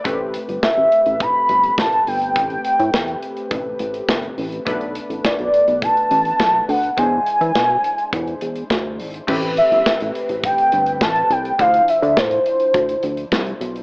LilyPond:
<<
  \new Staff \with { instrumentName = "Soft synth lead" } { \time 4/4 \key e \minor \tempo 4 = 104 r4 e''4 b''4 a''8 g''8~ | g''2~ g''8 r4. | r4 d''4 a''4. fis''8 | gis''2. r4 |
\key a \minor r8 e''4 r8 g''4 a''8 g''8 | f''8 e''8 c''2~ c''8 r8 | }
  \new Staff \with { instrumentName = "Analog polysynth" } { \time 4/4 \key e \minor << { d''16 r2. r8. | r1 | r1 | r1 |
\key a \minor r1 | r1 | } \\ { <a c' g' b'>1~ | <a c' g' b'>1 | <a b d' b'>1 | <gis d' e' c''>1 |
<a c' g' b'>1 | <f d' e' c''>1 | } >> }
  \new Staff \with { instrumentName = "Analog synth bass" } { \clef bass \time 4/4 \key e \minor a,,8. g,,16 r16 a,,16 r16 a,,8 r16 g,,8 a,,8 g,,8 | a,,8 r16 a,16 e,8 r8 a,,8 a,,8 g,,8 a,,8 | b,,8. a,,16 r16 b,,16 r16 b,,8 r16 a,,8 b,,8 d,8 | e,8 r16 e16 b,8 r8 e,8 e,8 d,8 gis,,8 |
\key a \minor a,,8. g,,16 r16 a,,16 r16 a,,8 r16 g,,8 a,,8 c,8 | d,8 r16 d16 a,8 r8 d,8 d,8 c,8 b,,8 | }
  \new DrumStaff \with { instrumentName = "Drums" } \drummode { \time 4/4 <hh bd>8 hh16 hh16 <bd sn>8 hh16 hh16 <hh bd>8 hh16 hh16 <bd sn>16 hh16 hho16 hh16 | <hh bd>16 hh16 hh16 hh16 <bd sn>16 hh16 hh16 hh16 <hh bd>8 hh16 hh16 <bd sn>16 hh16 hho16 hh16 | <hh bd>16 hh16 hh16 hh16 <bd sn>16 hh16 hh16 hh16 <hh bd>16 hh16 hh16 hh16 <bd sn>8 hho16 hh16 | <hh bd>8 hh16 hh16 <bd sn>8 hh16 hh16 <hh bd>16 hh16 hh16 hh16 <bd sn>8 hho16 hh16 |
<cymc bd>16 hh16 hh16 hh16 <bd sn>16 hh16 hh16 hh16 <hh bd>16 hh16 hh16 hh16 <bd sn>16 hh16 hh16 hh16 | <hh bd>16 hh16 hh16 hh16 <bd sn>16 hh16 hh16 hh16 <hh bd>16 hh16 hh16 hh16 <bd sn>16 hh16 hh16 hh16 | }
>>